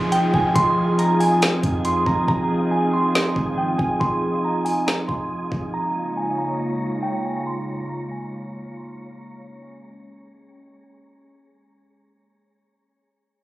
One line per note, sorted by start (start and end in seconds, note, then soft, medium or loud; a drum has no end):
0.00 0.32 F1 loud
0.00 5.70 F3 medium
0.00 5.70 C4 medium
0.00 9.15 D#4 medium
0.00 5.70 F4 medium
0.00 9.15 F4 medium
0.00 5.70 G#4 medium
0.00 5.70 D#5 medium
0.00 5.70 G#5 medium
0.00 downlifter medium
0.12 0.33 G5 medium
0.12 closed hi-hat medium
0.34 0.55 F1 loud
0.34 0.55 G#5 medium
0.34 kick loud
0.55 1.59 F1 loud
0.55 0.96 C6 medium
0.55 kick loud
0.55 closed hi-hat medium
0.99 1.19 A#5 medium
0.99 closed hi-hat medium
1.20 1.81 G#5 medium
1.20 open hi-hat medium
1.42 snare loud
1.42 closed hi-hat medium
1.63 2.05 F2 loud
1.63 kick medium
1.63 closed hi-hat medium
1.85 2.06 C6 medium
1.85 closed hi-hat medium
2.06 2.27 F1 loud
2.06 2.27 A#5 medium
2.06 kick medium
2.28 3.32 F1 loud
2.28 2.69 A#5 loud
2.28 kick loud
2.71 2.92 G#5 medium
2.93 3.54 C6 medium
3.15 snare loud
3.36 3.78 G#1 loud
3.36 kick medium
3.58 3.78 G5 medium
3.78 4.00 F1 loud
3.78 3.99 G#5 medium
3.78 kick medium
4.00 5.05 F1 loud
4.00 4.41 C6 loud
4.00 kick loud
4.45 4.65 A#5 medium
4.65 4.86 G#5 medium
4.65 open hi-hat medium
4.87 5.07 A#5 medium
4.87 snare loud
5.08 5.50 F1 loud
5.08 5.29 C6 medium
5.08 kick medium
5.52 5.73 F1 loud
5.52 kick loud
5.73 9.15 C#3 medium
5.73 9.15 G#3 medium
5.73 12.60 A#3 medium
5.73 9.15 F4 medium
5.73 12.60 C#5 medium
5.73 12.60 A#5 medium
5.73 6.14 A#5 loud
6.17 6.37 G#5 medium
6.38 6.99 A#5 medium
7.03 7.23 G5 medium
7.25 7.45 G#5 medium
7.47 7.87 C6 loud
7.89 8.10 A#5 medium
8.11 8.72 G#5 medium
8.77 8.97 C6 medium
8.98 9.17 A#5 medium
9.19 12.61 G#3 medium
9.19 12.61 C#4 loud
9.19 12.61 G#4 medium
9.19 9.59 A#5 medium
9.62 9.83 G#5 medium
9.84 10.45 A#5 medium
10.49 10.69 G5 medium
10.70 10.90 G#5 medium
10.92 11.32 C6 loud
11.35 11.55 A#5 medium
11.56 11.77 G#5 medium
11.78 11.98 A#5 medium
12.00 12.20 C6 medium